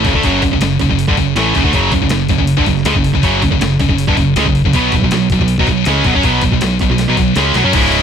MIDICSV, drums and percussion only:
0, 0, Header, 1, 2, 480
1, 0, Start_track
1, 0, Tempo, 375235
1, 301, Time_signature, 4, 2, 24, 8
1, 10264, End_track
2, 0, Start_track
2, 0, Title_t, "Drums"
2, 60, Note_on_c, 9, 46, 50
2, 61, Note_on_c, 9, 36, 92
2, 180, Note_off_c, 9, 36, 0
2, 180, Note_on_c, 9, 36, 82
2, 188, Note_off_c, 9, 46, 0
2, 298, Note_on_c, 9, 46, 68
2, 301, Note_off_c, 9, 36, 0
2, 301, Note_on_c, 9, 36, 79
2, 426, Note_off_c, 9, 46, 0
2, 429, Note_off_c, 9, 36, 0
2, 539, Note_on_c, 9, 36, 82
2, 540, Note_on_c, 9, 46, 56
2, 657, Note_off_c, 9, 36, 0
2, 657, Note_on_c, 9, 36, 67
2, 667, Note_off_c, 9, 46, 0
2, 777, Note_on_c, 9, 46, 77
2, 785, Note_off_c, 9, 36, 0
2, 789, Note_on_c, 9, 38, 98
2, 905, Note_off_c, 9, 46, 0
2, 917, Note_off_c, 9, 38, 0
2, 1017, Note_on_c, 9, 46, 56
2, 1019, Note_on_c, 9, 36, 86
2, 1140, Note_off_c, 9, 36, 0
2, 1140, Note_on_c, 9, 36, 75
2, 1144, Note_off_c, 9, 46, 0
2, 1263, Note_on_c, 9, 46, 69
2, 1268, Note_off_c, 9, 36, 0
2, 1381, Note_on_c, 9, 36, 102
2, 1391, Note_off_c, 9, 46, 0
2, 1500, Note_off_c, 9, 36, 0
2, 1500, Note_on_c, 9, 36, 72
2, 1501, Note_on_c, 9, 46, 50
2, 1628, Note_off_c, 9, 36, 0
2, 1629, Note_off_c, 9, 46, 0
2, 1739, Note_on_c, 9, 46, 61
2, 1750, Note_on_c, 9, 38, 106
2, 1867, Note_off_c, 9, 46, 0
2, 1878, Note_off_c, 9, 38, 0
2, 1977, Note_on_c, 9, 36, 97
2, 1982, Note_on_c, 9, 46, 51
2, 2096, Note_off_c, 9, 36, 0
2, 2096, Note_on_c, 9, 36, 76
2, 2110, Note_off_c, 9, 46, 0
2, 2214, Note_off_c, 9, 36, 0
2, 2214, Note_on_c, 9, 36, 86
2, 2214, Note_on_c, 9, 46, 64
2, 2342, Note_off_c, 9, 36, 0
2, 2342, Note_off_c, 9, 46, 0
2, 2451, Note_on_c, 9, 36, 86
2, 2452, Note_on_c, 9, 46, 53
2, 2568, Note_off_c, 9, 36, 0
2, 2568, Note_on_c, 9, 36, 71
2, 2580, Note_off_c, 9, 46, 0
2, 2679, Note_on_c, 9, 46, 79
2, 2691, Note_on_c, 9, 38, 112
2, 2696, Note_off_c, 9, 36, 0
2, 2807, Note_off_c, 9, 46, 0
2, 2819, Note_off_c, 9, 38, 0
2, 2924, Note_on_c, 9, 46, 54
2, 2928, Note_on_c, 9, 36, 84
2, 3047, Note_off_c, 9, 36, 0
2, 3047, Note_on_c, 9, 36, 78
2, 3052, Note_off_c, 9, 46, 0
2, 3165, Note_on_c, 9, 46, 75
2, 3175, Note_off_c, 9, 36, 0
2, 3288, Note_on_c, 9, 36, 105
2, 3293, Note_off_c, 9, 46, 0
2, 3408, Note_off_c, 9, 36, 0
2, 3408, Note_on_c, 9, 36, 67
2, 3408, Note_on_c, 9, 46, 53
2, 3536, Note_off_c, 9, 36, 0
2, 3536, Note_off_c, 9, 46, 0
2, 3546, Note_on_c, 9, 38, 28
2, 3647, Note_on_c, 9, 46, 79
2, 3659, Note_off_c, 9, 38, 0
2, 3659, Note_on_c, 9, 38, 101
2, 3769, Note_on_c, 9, 36, 89
2, 3775, Note_off_c, 9, 46, 0
2, 3787, Note_off_c, 9, 38, 0
2, 3893, Note_on_c, 9, 46, 58
2, 3897, Note_off_c, 9, 36, 0
2, 4012, Note_on_c, 9, 36, 74
2, 4021, Note_off_c, 9, 46, 0
2, 4129, Note_off_c, 9, 36, 0
2, 4129, Note_on_c, 9, 36, 87
2, 4133, Note_on_c, 9, 46, 65
2, 4257, Note_off_c, 9, 36, 0
2, 4261, Note_off_c, 9, 46, 0
2, 4372, Note_on_c, 9, 36, 82
2, 4378, Note_on_c, 9, 46, 56
2, 4490, Note_off_c, 9, 36, 0
2, 4490, Note_on_c, 9, 36, 80
2, 4506, Note_off_c, 9, 46, 0
2, 4618, Note_off_c, 9, 36, 0
2, 4620, Note_on_c, 9, 46, 77
2, 4631, Note_on_c, 9, 38, 122
2, 4747, Note_off_c, 9, 46, 0
2, 4759, Note_off_c, 9, 38, 0
2, 4853, Note_on_c, 9, 36, 89
2, 4856, Note_on_c, 9, 46, 58
2, 4976, Note_off_c, 9, 36, 0
2, 4976, Note_on_c, 9, 36, 82
2, 4984, Note_off_c, 9, 46, 0
2, 5097, Note_on_c, 9, 46, 86
2, 5103, Note_off_c, 9, 36, 0
2, 5214, Note_on_c, 9, 36, 111
2, 5225, Note_off_c, 9, 46, 0
2, 5335, Note_off_c, 9, 36, 0
2, 5335, Note_on_c, 9, 36, 72
2, 5337, Note_on_c, 9, 46, 53
2, 5463, Note_off_c, 9, 36, 0
2, 5465, Note_off_c, 9, 46, 0
2, 5577, Note_on_c, 9, 46, 72
2, 5589, Note_on_c, 9, 38, 102
2, 5696, Note_on_c, 9, 36, 92
2, 5705, Note_off_c, 9, 46, 0
2, 5717, Note_off_c, 9, 38, 0
2, 5821, Note_on_c, 9, 46, 44
2, 5824, Note_off_c, 9, 36, 0
2, 5938, Note_on_c, 9, 36, 77
2, 5949, Note_off_c, 9, 46, 0
2, 6056, Note_on_c, 9, 46, 73
2, 6059, Note_off_c, 9, 36, 0
2, 6059, Note_on_c, 9, 36, 79
2, 6184, Note_off_c, 9, 46, 0
2, 6186, Note_off_c, 9, 36, 0
2, 6295, Note_on_c, 9, 46, 50
2, 6297, Note_on_c, 9, 36, 88
2, 6417, Note_off_c, 9, 36, 0
2, 6417, Note_on_c, 9, 36, 72
2, 6423, Note_off_c, 9, 46, 0
2, 6535, Note_on_c, 9, 46, 74
2, 6545, Note_off_c, 9, 36, 0
2, 6547, Note_on_c, 9, 38, 116
2, 6663, Note_off_c, 9, 46, 0
2, 6675, Note_off_c, 9, 38, 0
2, 6776, Note_on_c, 9, 46, 55
2, 6777, Note_on_c, 9, 36, 90
2, 6896, Note_off_c, 9, 36, 0
2, 6896, Note_on_c, 9, 36, 81
2, 6904, Note_off_c, 9, 46, 0
2, 7009, Note_on_c, 9, 46, 73
2, 7024, Note_off_c, 9, 36, 0
2, 7135, Note_on_c, 9, 36, 98
2, 7137, Note_off_c, 9, 46, 0
2, 7252, Note_on_c, 9, 46, 43
2, 7256, Note_off_c, 9, 36, 0
2, 7256, Note_on_c, 9, 36, 63
2, 7380, Note_off_c, 9, 46, 0
2, 7384, Note_off_c, 9, 36, 0
2, 7488, Note_on_c, 9, 46, 72
2, 7500, Note_on_c, 9, 38, 95
2, 7616, Note_off_c, 9, 46, 0
2, 7628, Note_off_c, 9, 38, 0
2, 7731, Note_on_c, 9, 46, 48
2, 7735, Note_on_c, 9, 36, 93
2, 7854, Note_off_c, 9, 36, 0
2, 7854, Note_on_c, 9, 36, 73
2, 7859, Note_off_c, 9, 46, 0
2, 7975, Note_off_c, 9, 36, 0
2, 7975, Note_on_c, 9, 36, 82
2, 7975, Note_on_c, 9, 46, 65
2, 8103, Note_off_c, 9, 36, 0
2, 8103, Note_off_c, 9, 46, 0
2, 8206, Note_on_c, 9, 46, 62
2, 8213, Note_on_c, 9, 36, 88
2, 8334, Note_off_c, 9, 36, 0
2, 8334, Note_off_c, 9, 46, 0
2, 8334, Note_on_c, 9, 36, 74
2, 8454, Note_on_c, 9, 46, 82
2, 8462, Note_off_c, 9, 36, 0
2, 8466, Note_on_c, 9, 38, 109
2, 8582, Note_off_c, 9, 46, 0
2, 8594, Note_off_c, 9, 38, 0
2, 8690, Note_on_c, 9, 46, 52
2, 8693, Note_on_c, 9, 36, 87
2, 8818, Note_off_c, 9, 46, 0
2, 8821, Note_off_c, 9, 36, 0
2, 8932, Note_on_c, 9, 46, 72
2, 8944, Note_on_c, 9, 38, 63
2, 9060, Note_off_c, 9, 46, 0
2, 9071, Note_off_c, 9, 38, 0
2, 9173, Note_on_c, 9, 36, 85
2, 9175, Note_on_c, 9, 46, 55
2, 9301, Note_off_c, 9, 36, 0
2, 9303, Note_off_c, 9, 46, 0
2, 9410, Note_on_c, 9, 46, 74
2, 9421, Note_on_c, 9, 38, 83
2, 9538, Note_off_c, 9, 46, 0
2, 9549, Note_off_c, 9, 38, 0
2, 9650, Note_on_c, 9, 46, 54
2, 9661, Note_on_c, 9, 38, 77
2, 9777, Note_off_c, 9, 46, 0
2, 9789, Note_off_c, 9, 38, 0
2, 9891, Note_on_c, 9, 49, 108
2, 9891, Note_on_c, 9, 57, 85
2, 9892, Note_on_c, 9, 36, 99
2, 10019, Note_off_c, 9, 49, 0
2, 10019, Note_off_c, 9, 57, 0
2, 10020, Note_off_c, 9, 36, 0
2, 10131, Note_on_c, 9, 57, 59
2, 10259, Note_off_c, 9, 57, 0
2, 10264, End_track
0, 0, End_of_file